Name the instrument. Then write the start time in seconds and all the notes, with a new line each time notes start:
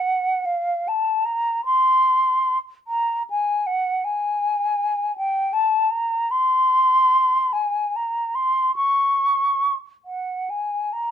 flute
Already playing: F#5
0.45 F5
0.88 A5
1.25 A#5
1.65 C6
2.87 A#5
3.30 G#5
3.66 F#5
4.04 G#5
5.17 G5
5.53 A5
5.90 A#5
6.31 C6
7.53 G#5
7.96 A#5
8.35 C6
8.76 C#6
10.05 F#5
10.50 G#5
10.93 A#5